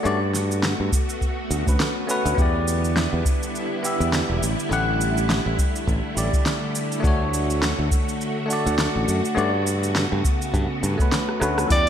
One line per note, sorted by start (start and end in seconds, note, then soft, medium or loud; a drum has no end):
0.03 0.73 G2 loud
0.03 0.17 A3 medium
0.03 2.36 A3 medium
0.03 4.38 B3 medium
0.03 0.18 C#4 medium
0.03 2.36 F#4 medium
0.03 0.18 F#4 medium
0.03 0.19 D5 loud
0.03 cabasa soft
0.34 snare soft
0.34 cabasa medium
0.51 cabasa soft
0.63 snare medium
0.63 cabasa soft
0.80 0.89 G2 medium
0.92 kick loud
0.92 cabasa medium
1.09 cabasa soft
1.21 kick medium
1.21 cabasa soft
1.51 1.63 D2 medium
1.51 cabasa medium
1.65 1.76 D2 medium
1.65 2.05 A3 medium
1.65 2.06 C#4 medium
1.65 2.06 F#4 medium
1.65 2.07 B4 medium
1.65 kick loud
1.65 cabasa soft
1.80 snare loud
1.80 cabasa soft
2.07 2.34 A3 medium
2.07 2.35 C#4 medium
2.07 2.35 F#4 medium
2.07 2.36 B4 loud
2.07 cabasa medium
2.25 2.35 D2 medium
2.25 cabasa soft
2.35 3.06 E2 loud
2.35 4.40 D3 medium
2.35 7.00 G3 medium
2.35 3.79 B3 medium
2.35 3.80 E4 medium
2.35 7.00 E4 medium
2.35 kick loud
2.39 3.81 G4 medium
2.39 3.83 D5 loud
2.39 cabasa soft
2.68 cabasa medium
2.84 cabasa soft
2.96 snare medium
2.96 cabasa soft
3.13 3.22 E2 medium
3.25 kick loud
3.25 cabasa medium
3.43 cabasa soft
3.55 cabasa soft
3.83 4.40 B3 medium
3.83 4.40 E4 medium
3.83 4.41 G4 medium
3.83 4.42 E5 medium
3.83 cabasa medium
4.00 4.21 E2 medium
4.00 cabasa soft
4.13 snare medium
4.13 cabasa soft
4.30 4.39 E1 medium
4.42 4.54 A1 medium
4.42 9.33 D3 medium
4.42 11.66 A3 medium
4.42 cabasa medium
4.59 cabasa soft
4.69 5.39 A1 medium
4.69 4.83 A3 medium
4.69 4.84 E4 medium
4.69 4.85 G4 medium
4.69 4.85 F#5 loud
4.69 cabasa soft
5.01 cabasa medium
5.18 cabasa soft
5.30 snare medium
5.30 cabasa soft
5.46 5.55 A1 medium
5.58 kick loud
5.58 cabasa medium
5.76 cabasa soft
5.87 6.00 A1 loud
5.87 kick medium
5.87 cabasa soft
6.15 6.29 A1 medium
6.15 6.29 A3 medium
6.15 6.29 E4 medium
6.15 6.30 G4 medium
6.15 6.31 D5 medium
6.15 cabasa medium
6.33 kick medium
6.33 cabasa soft
6.46 snare medium
6.46 cabasa soft
6.75 cabasa medium
6.92 cabasa soft
7.00 7.72 D2 loud
7.00 8.44 A3 medium
7.00 8.46 D4 medium
7.00 kick loud
7.04 11.66 F#4 medium
7.04 8.47 F#4 medium
7.04 8.48 C#5 loud
7.04 cabasa soft
7.34 cabasa medium
7.50 cabasa soft
7.62 snare medium
7.62 cabasa soft
7.79 7.88 D2 medium
7.91 kick loud
7.91 cabasa medium
8.09 cabasa soft
8.21 cabasa soft
8.45 9.32 A3 medium
8.45 9.33 D4 medium
8.50 9.34 F#4 medium
8.50 9.36 D5 medium
8.50 cabasa medium
8.66 8.87 D2 medium
8.66 cabasa soft
8.79 snare loud
8.79 cabasa soft
8.96 9.05 A1 medium
9.08 9.20 F#2 medium
9.08 cabasa medium
9.25 cabasa soft
9.35 10.05 G2 loud
9.35 11.68 C#3 medium
9.35 9.49 A3 loud
9.35 11.68 B3 medium
9.35 9.50 C#4 medium
9.35 9.50 F#4 medium
9.35 9.51 D5 loud
9.35 cabasa soft
9.67 cabasa medium
9.84 cabasa soft
9.95 snare medium
9.95 cabasa soft
10.12 10.21 G2 medium
10.25 kick loud
10.25 cabasa medium
10.42 cabasa soft
10.54 10.66 G2 loud
10.54 kick medium
10.54 cabasa soft
10.83 10.95 G2 medium
10.83 cabasa medium
10.98 11.37 A3 medium
10.98 11.38 C#4 medium
10.98 11.38 F#4 medium
10.98 11.39 B4 medium
10.98 kick medium
10.98 cabasa soft
11.12 snare medium
11.12 cabasa soft
11.29 cross-stick medium
11.40 11.64 D2 medium
11.40 11.66 A3 medium
11.40 11.67 C#4 medium
11.40 11.68 F#4 medium
11.40 11.68 B4 medium
11.40 cross-stick medium
11.40 cabasa medium
11.58 cross-stick medium
11.58 cabasa soft
11.68 11.89 E2 medium
11.68 11.89 E3 medium
11.68 11.89 G3 medium
11.68 11.89 B3 medium
11.68 11.89 E4 medium
11.68 kick loud
11.68 open hi-hat medium
11.68 cabasa soft
11.72 11.89 D4 medium
11.72 11.89 G4 loud
11.72 11.89 D5 loud